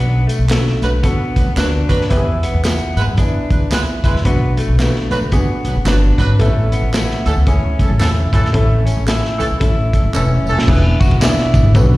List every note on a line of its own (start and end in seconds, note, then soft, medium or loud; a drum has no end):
0.00 0.24 B1 medium
0.00 0.23 B3 medium
0.00 0.37 B3 medium
0.00 0.37 D4 medium
0.00 0.38 F#4 medium
0.00 0.38 B4 medium
0.27 0.45 A3 medium
0.27 closed hi-hat medium
0.27 tambourine soft
0.39 0.72 B1 medium
0.49 1.00 A3 medium
0.49 0.93 B3 medium
0.49 0.58 C#4 medium
0.49 0.94 F#4 medium
0.49 0.94 A4 medium
0.49 snare loud
0.49 clap medium
0.49 closed hi-hat medium
0.49 tambourine medium
0.56 0.97 D4 medium
0.67 snare soft
0.82 1.11 B1 medium
0.82 0.90 F#3 medium
0.82 0.90 D4 medium
0.82 0.89 B4 medium
0.82 closed hi-hat medium
0.82 tambourine soft
1.03 1.47 B3 medium
1.03 1.54 B3 medium
1.03 1.47 D4 medium
1.03 1.48 F#4 medium
1.03 1.48 A4 medium
1.03 kick loud
1.03 closed hi-hat medium
1.03 tambourine medium
1.35 1.44 D2 medium
1.35 1.45 F#3 medium
1.35 1.45 D4 medium
1.35 1.45 B4 medium
1.35 kick medium
1.35 closed hi-hat medium
1.35 tambourine soft
1.46 1.55 C#2 medium
1.56 1.82 D2 medium
1.56 1.68 F#3 medium
1.56 2.00 B3 medium
1.56 1.67 D4 medium
1.56 2.07 D4 medium
1.56 2.01 D4 medium
1.56 2.01 F#4 medium
1.56 1.66 A#4 medium
1.56 1.67 B4 medium
1.56 snare loud
1.56 clap medium
1.56 closed hi-hat medium
1.56 tambourine medium
1.65 2.05 B4 medium
1.89 2.05 D#2 medium
1.89 2.03 F#3 medium
1.89 2.03 D4 medium
1.89 2.02 B4 loud
1.89 kick medium
1.89 closed hi-hat medium
1.89 tambourine soft
2.01 snare soft
2.09 2.44 E2 loud
2.09 2.54 B3 loud
2.09 2.54 E4 medium
2.09 2.37 E4 medium
2.09 2.19 G4 medium
2.09 2.55 B4 loud
2.09 kick loud
2.09 closed hi-hat medium
2.09 tambourine soft
2.17 2.57 G#4 medium
2.43 2.61 B3 medium
2.43 closed hi-hat medium
2.43 tambourine soft
2.54 2.74 E2 medium
2.64 3.08 B3 medium
2.64 3.15 B3 medium
2.64 3.08 E4 medium
2.64 3.08 G#4 medium
2.64 3.08 B4 medium
2.64 snare loud
2.64 clap medium
2.64 closed hi-hat medium
2.64 tambourine medium
2.96 3.05 G#2 medium
2.96 3.04 G#3 medium
2.96 3.04 E4 medium
2.96 3.04 B4 medium
2.96 closed hi-hat medium
2.96 tambourine soft
3.07 3.28 F#2 medium
3.17 3.61 B3 medium
3.17 3.69 D4 medium
3.17 3.61 E4 medium
3.17 3.62 G#4 medium
3.17 3.62 B4 medium
3.17 kick medium
3.17 closed hi-hat medium
3.17 tambourine medium
3.50 3.60 E2 medium
3.50 3.60 G#3 medium
3.50 3.60 E4 medium
3.50 3.59 B4 medium
3.50 kick medium
3.50 closed hi-hat medium
3.50 tambourine soft
3.60 3.81 C#2 medium
3.70 3.82 G#3 medium
3.70 4.15 B3 medium
3.70 4.15 E4 medium
3.70 3.83 E4 medium
3.70 4.15 G#4 medium
3.70 3.82 B4 loud
3.70 4.16 B4 medium
3.70 snare medium
3.70 clap loud
3.70 closed hi-hat medium
3.70 tambourine medium
4.04 4.12 D2 medium
4.04 4.18 G#3 medium
4.04 4.21 E4 medium
4.04 4.18 E4 medium
4.04 4.18 B4 medium
4.04 kick medium
4.04 closed hi-hat medium
4.04 tambourine soft
4.14 4.22 E2 medium
4.14 snare soft
4.24 4.58 B1 loud
4.24 4.68 B3 medium
4.24 4.52 B3 medium
4.24 4.68 D4 medium
4.24 4.69 F#4 medium
4.24 4.69 B4 loud
4.24 kick loud
4.24 closed hi-hat medium
4.24 tambourine soft
4.57 4.75 A3 medium
4.57 closed hi-hat medium
4.57 tambourine soft
4.68 4.88 B1 medium
4.78 5.30 A3 medium
4.78 5.22 B3 medium
4.78 5.22 D4 medium
4.78 5.23 F#4 medium
4.78 5.23 B4 medium
4.78 snare loud
4.78 clap medium
4.78 closed hi-hat medium
4.78 tambourine medium
4.96 snare soft
5.11 5.19 D2 medium
5.11 5.18 F#3 medium
5.11 5.18 D4 medium
5.11 5.18 B4 medium
5.11 closed hi-hat medium
5.11 tambourine medium
5.21 5.42 C#2 medium
5.31 5.75 B3 medium
5.31 5.83 B3 medium
5.31 5.76 D4 medium
5.31 5.76 F#4 medium
5.31 5.76 G#4 medium
5.31 kick loud
5.31 closed hi-hat medium
5.31 tambourine soft
5.65 5.73 B1 medium
5.65 5.74 F#3 medium
5.65 5.74 D4 medium
5.65 5.74 B4 medium
5.65 closed hi-hat medium
5.65 tambourine soft
5.75 5.83 G#1 medium
5.85 6.10 G1 medium
5.85 5.96 F#3 medium
5.85 6.29 B3 medium
5.85 5.96 D4 medium
5.85 6.36 D4 medium
5.85 6.29 D4 medium
5.85 6.30 F#4 medium
5.85 5.96 B4 loud
5.85 6.30 D5 medium
5.85 snare medium
5.85 clap medium
5.85 closed hi-hat medium
5.85 tambourine loud
6.18 6.34 G#1 medium
6.18 6.32 F#3 medium
6.18 6.32 D4 medium
6.18 6.32 B4 loud
6.18 kick medium
6.18 closed hi-hat medium
6.18 tambourine soft
6.39 6.72 A1 loud
6.39 6.83 A3 medium
6.39 6.66 A3 medium
6.39 6.47 B3 medium
6.39 6.84 E4 medium
6.39 6.84 A4 loud
6.39 kick loud
6.39 closed hi-hat medium
6.39 tambourine soft
6.46 6.86 C#4 medium
6.72 6.90 B3 medium
6.72 closed hi-hat medium
6.72 tambourine soft
6.82 7.03 A1 medium
6.92 7.36 A3 medium
6.92 7.44 B3 medium
6.92 7.37 C#4 medium
6.92 7.37 E4 medium
6.92 7.38 A4 medium
6.92 snare loud
6.92 clap medium
6.92 closed hi-hat medium
6.92 tambourine medium
7.11 snare soft
7.25 7.34 D2 medium
7.25 7.32 E3 medium
7.25 7.32 C#4 medium
7.25 7.32 A4 medium
7.25 closed hi-hat medium
7.25 tambourine soft
7.36 7.57 C#2 medium
7.46 7.90 A3 medium
7.46 7.90 C#4 medium
7.46 7.97 C#4 medium
7.46 7.91 E4 medium
7.46 7.91 G#4 medium
7.46 kick loud
7.46 closed hi-hat medium
7.46 tambourine medium
7.79 7.87 B1 medium
7.79 7.89 E3 medium
7.79 7.89 C#4 medium
7.79 7.89 A4 medium
7.79 kick medium
7.79 closed hi-hat medium
7.79 tambourine soft
7.89 7.98 A1 medium
7.99 8.25 E2 medium
7.99 8.10 E3 medium
7.99 8.44 A3 medium
7.99 8.10 C#4 medium
7.99 8.44 C#4 medium
7.99 8.44 E4 medium
7.99 8.10 A4 loud
7.99 8.44 A4 medium
7.99 snare medium
7.99 clap medium
7.99 closed hi-hat medium
7.99 tambourine medium
8.32 8.49 A2 medium
8.32 8.46 E3 medium
8.32 8.46 C#4 medium
8.32 8.50 E4 medium
8.32 8.46 A4 medium
8.32 kick medium
8.32 closed hi-hat medium
8.32 tambourine soft
8.45 snare soft
8.53 8.87 A1 loud
8.53 8.97 A3 medium
8.53 8.80 A3 medium
8.53 8.97 C#4 medium
8.53 8.98 E4 medium
8.53 8.98 A4 loud
8.53 kick loud
8.53 closed hi-hat medium
8.85 9.03 C#4 medium
8.85 closed hi-hat medium
8.85 tambourine soft
8.97 9.17 A1 medium
9.07 9.51 A3 medium
9.07 9.51 C#4 medium
9.07 9.58 E4 medium
9.07 9.51 E4 medium
9.07 9.52 A4 medium
9.07 snare loud
9.07 clap medium
9.07 closed hi-hat medium
9.07 tambourine medium
9.25 snare soft
9.38 9.48 C#2 medium
9.38 9.46 E3 medium
9.38 9.46 C#4 medium
9.38 9.46 A4 loud
9.38 closed hi-hat medium
9.38 tambourine medium
9.51 9.59 B1 medium
9.60 9.94 A1 medium
9.60 10.04 A3 medium
9.60 10.05 C#4 medium
9.60 10.11 E4 medium
9.60 10.05 E4 medium
9.60 10.05 A4 medium
9.60 kick loud
9.60 closed hi-hat medium
9.60 tambourine soft
9.93 10.02 E3 medium
9.93 10.02 C#4 medium
9.93 10.02 A4 medium
9.93 kick medium
9.93 closed hi-hat medium
9.93 tambourine soft
10.04 10.12 F#1 medium
10.14 10.39 E1 medium
10.14 10.24 E3 medium
10.14 10.58 A3 medium
10.14 10.24 C#4 medium
10.14 10.65 C#4 medium
10.14 10.58 C#4 medium
10.14 10.58 E4 medium
10.14 10.25 A4 medium
10.14 10.59 B4 medium
10.14 clap medium
10.14 tambourine loud
10.46 10.62 D#1 medium
10.46 10.61 E3 medium
10.46 10.61 C#4 medium
10.46 10.61 A4 medium
10.46 tambourine soft
10.59 snare medium
10.67 10.93 E1 loud
10.67 11.11 B3 medium
10.67 11.11 D4 medium
10.67 11.12 E4 medium
10.67 11.12 G#4 medium
10.67 11.12 B4 loud
10.67 kick loud
10.67 crash loud
10.67 tambourine soft
11.00 11.29 B1 medium
11.00 11.18 F#4 medium
11.00 kick loud
11.00 ride medium
11.00 tambourine medium
11.11 ride soft
11.20 11.65 B3 medium
11.20 11.65 D4 medium
11.20 11.71 E4 medium
11.20 11.65 E4 medium
11.20 11.65 G#4 medium
11.20 11.66 D5 medium
11.20 snare loud
11.20 clap loud
11.20 ride medium
11.20 tambourine medium
11.39 snare soft
11.54 11.62 G#1 medium
11.54 kick medium
11.54 ride soft
11.54 tambourine medium
11.64 11.72 G#1 medium
11.74 11.97 B1 loud
11.74 11.97 B3 medium
11.74 11.83 C#4 medium
11.74 11.97 F#4 medium
11.74 11.97 A4 medium
11.74 11.97 B4 medium
11.74 kick loud
11.74 ride medium
11.74 tambourine medium
11.81 11.97 D4 medium